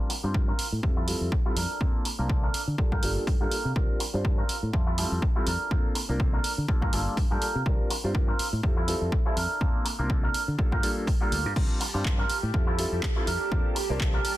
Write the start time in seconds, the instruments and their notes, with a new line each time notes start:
0.10 muted clean electric guitar stroke, open hi-hat
0.23 fingered electric bass G2, grand piano G3 C4 D4 F4 C5, muted clean electric guitar stroke
0.34 grand piano G3 C4 D4 F4 A#4, kick
0.48 clean electric guitar C4 F4 A#4
0.59 muted fingered electric bass stroke, open hi-hat
0.72 fingered electric bass A2
0.83 grand piano G3 C4 E4 F4 A4, muted clean electric guitar stroke, kick
0.97 clean electric guitar E4 F4 A4
1.07 grand piano G3 C4 E4 F4 A4, open hi-hat
1.21 fingered electric bass F2
1.32 muted clean electric guitar stroke, kick
1.45 grand piano G3 C4 E4 F4 A4, clean electric guitar E4 F4 A4
1.56 fingered electric bass F2, clean electric guitar D4 A4 A#4, open hi-hat
1.81 fingered electric bass F2, grand piano A#3 C4 D4 F4 A4, kick
2.05 muted clean electric guitar stroke, open hi-hat
2.19 fingered electric bass C2, grand piano A#3 C4 D4 F4 A#4, muted clean electric guitar stroke
2.30 kick
2.43 clean electric guitar D4 A4 A#4
2.54 muted fingered electric bass stroke, open hi-hat
2.67 fingered electric bass D3
2.78 grand piano G3 A#3 D4 F4 A4, muted clean electric guitar stroke, kick
2.92 fingered electric bass G2, clean electric guitar F4 G4 A#4, kick
3.02 fingered electric bass G1, grand piano G3 A#3 D4 F4 A4, open hi-hat
3.17 muted fingered electric bass stroke
3.27 fingered electric bass G2, muted clean electric guitar stroke, kick, open hi-hat
3.40 fingered electric bass G2, grand piano G3 A#3 D4 F4 A4, clean electric guitar F4 G4 A#4
3.51 muted fingered electric bass stroke, open hi-hat
3.65 fingered electric bass C3
3.76 fingered electric bass C2, grand piano G3 C4 D4 F4 A#4, kick
3.99 muted clean electric guitar stroke, open hi-hat
4.13 fingered electric bass G2, grand piano G3 C4 D4 F4 C5, muted clean electric guitar stroke
4.25 kick
4.38 clean electric guitar C4 F4 A#4
4.49 muted fingered electric bass stroke, open hi-hat
4.63 fingered electric bass A2
4.73 fingered electric bass F2, grand piano G3 C4 E4 F4 A4, muted clean electric guitar stroke, kick
4.87 clean electric guitar E4 F4 A4
4.98 grand piano G3 C4 E4 F4 A4, open hi-hat
5.12 fingered electric bass F2
5.22 muted clean electric guitar stroke, kick
5.36 grand piano G3 C4 E4 F4 A4, clean electric guitar E4 F4 A4
5.46 fingered electric bass F2, clean electric guitar D4 A4 A#4, open hi-hat
5.71 fingered electric bass F2, grand piano A#3 C4 D4 F4 A4, kick
5.95 muted clean electric guitar stroke, open hi-hat
6.09 fingered electric bass C2, grand piano A#3 C4 D4 F4 A#4, muted clean electric guitar stroke
6.19 grand piano A#3 C4 D4 A4, kick
6.33 clean electric guitar D4 A4 A#4
6.44 muted fingered electric bass stroke, open hi-hat
6.58 fingered electric bass D3
6.68 grand piano G3 A#3 D4 F4 A4, muted clean electric guitar stroke, kick
6.82 fingered electric bass G2, clean electric guitar F4 G4 A#4, kick
6.93 fingered electric bass G1, grand piano G3 A#3 D4 F4 A4, open hi-hat
7.07 muted fingered electric bass stroke
7.17 fingered electric bass G2, muted clean electric guitar stroke, kick, open hi-hat
7.31 fingered electric bass G2, grand piano G3 A#3 D4 F4 A4, clean electric guitar F4 G4 A#4
7.42 muted fingered electric bass stroke, open hi-hat
7.55 fingered electric bass C3
7.66 fingered electric bass C2, grand piano G3 C4 D4 F4 A#4, kick
7.90 muted clean electric guitar stroke, open hi-hat
8.03 fingered electric bass G2, grand piano G3 C4 D4 F4 C5, muted clean electric guitar stroke
8.14 grand piano C4 D4, kick
8.28 clean electric guitar C4 F4 A#4
8.39 muted fingered electric bass stroke, open hi-hat
8.53 fingered electric bass A2
8.63 grand piano G3 C4 E4 F4 A4, muted clean electric guitar stroke, kick
8.77 clean electric guitar E4 F4 A4
8.87 grand piano G3 C4 E4 F4 A4, open hi-hat
9.01 fingered electric bass F2
9.12 muted clean electric guitar stroke, kick
9.25 grand piano G3 C4 E4 F4 A4, clean electric guitar E4 F4 A4
9.36 fingered electric bass F2, clean electric guitar D4 A4 A#4, open hi-hat
9.61 fingered electric bass F2, grand piano A#3 C4 D4 F4 A4, kick
9.85 muted clean electric guitar stroke, open hi-hat
9.99 fingered electric bass C2, grand piano A#3 C4 D4 F4 A#4, muted clean electric guitar stroke
10.10 grand piano A#3 C4 D4 A4, kick
10.23 clean electric guitar D4 A4 A#4
10.34 muted fingered electric bass stroke, open hi-hat
10.48 fingered electric bass D3
10.58 grand piano G3 A#3 D4 F4 A4, muted clean electric guitar stroke, kick
10.72 fingered electric bass G2, clean electric guitar F4 G4 A#4, kick
10.82 grand piano G3 A#3 D4 F4 A4, open hi-hat
11.07 muted clean electric guitar stroke, kick, open hi-hat
11.20 grand piano G3 A#3 D4 F4 A4, clean electric guitar F4 G4 A#4
11.32 fingered electric bass D2, open hi-hat
11.46 fingered electric bass G2
11.55 fingered electric bass C2, grand piano G3 C4 D4 F4 A#4, string machine G4 A5, kick, crash
11.80 muted clean electric guitar stroke, open hi-hat
11.94 fingered electric bass G2, grand piano G3 C4 D4 F4 C5, muted clean electric guitar stroke
12.05 grand piano D4 F4, kick, clap
12.18 clean electric guitar C4 F4 A#4
12.30 muted fingered electric bass stroke, open hi-hat
12.43 fingered electric bass A2
12.54 fingered electric bass F2, grand piano G3 C4 E4 F4 A4, muted clean electric guitar stroke, kick
12.67 clean electric guitar E4 F4 A4
12.78 grand piano G3 C4 E4 F4 A4, open hi-hat
12.92 fingered electric bass F2
13.02 muted clean electric guitar stroke, kick, clap
13.16 grand piano G3 C4 E4 F4 A4, clean electric guitar E4 F4 A4
13.26 fingered electric bass F2, clean electric guitar D4 A4 A#4, open hi-hat
13.52 fingered electric bass F2, grand piano A#3 C4 D4 F4 A4, kick
13.75 muted clean electric guitar stroke, open hi-hat
13.89 fingered electric bass C2, grand piano A#3 C4 D4 F4 A#4, muted clean electric guitar stroke
14.00 grand piano A#3 C4 D4 A4, kick, clap
14.13 clean electric guitar D4 A4 A#4
14.25 muted fingered electric bass stroke, open hi-hat